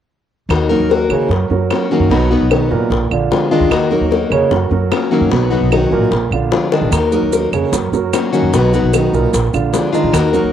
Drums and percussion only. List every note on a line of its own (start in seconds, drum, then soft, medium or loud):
0.50 high bongo medium
0.50 claves medium
0.71 high bongo soft
0.91 high bongo medium
1.10 high bongo soft
1.10 claves medium
1.31 high bongo medium
1.51 high bongo soft
1.70 high bongo medium
1.70 low bongo medium
1.70 claves medium
2.11 high bongo medium
2.32 high bongo soft
2.51 high bongo medium
2.51 claves medium
2.72 high bongo soft
2.92 high bongo medium
3.11 claves medium
3.32 high bongo medium
3.32 low bongo medium
3.52 high bongo soft
3.71 high bongo medium
3.71 claves medium
3.92 high bongo soft
4.12 high bongo medium
4.32 high bongo soft
4.32 claves medium
4.51 high bongo medium
4.71 high bongo soft
4.92 high bongo medium
4.92 low bongo medium
4.92 claves medium
5.32 high bongo medium
5.52 high bongo soft
5.72 high bongo medium
5.72 claves medium
5.92 high bongo soft
6.12 high bongo medium
6.32 claves medium
6.52 high bongo medium
6.52 low bongo medium
6.72 high bongo medium
6.92 high bongo medium
6.92 claves medium
6.92 maracas medium
7.12 high bongo soft
7.12 maracas soft
7.33 high bongo medium
7.33 maracas medium
7.53 high bongo soft
7.53 claves medium
7.53 maracas soft
7.73 high bongo medium
7.73 maracas medium
7.93 high bongo soft
7.93 maracas soft
8.13 high bongo medium
8.13 low bongo medium
8.13 claves medium
8.13 maracas medium
8.34 maracas soft
8.53 high bongo medium
8.53 maracas medium
8.73 high bongo soft
8.73 maracas soft
8.93 high bongo soft
8.93 claves medium
8.93 maracas medium
9.14 high bongo soft
9.14 maracas soft
9.34 high bongo medium
9.34 maracas medium
9.54 claves medium
9.54 maracas soft
9.74 high bongo medium
9.74 low bongo medium
9.74 maracas medium
9.94 high bongo soft
9.94 maracas soft
10.14 high bongo medium
10.14 claves medium
10.14 maracas medium
10.34 high bongo soft
10.34 maracas soft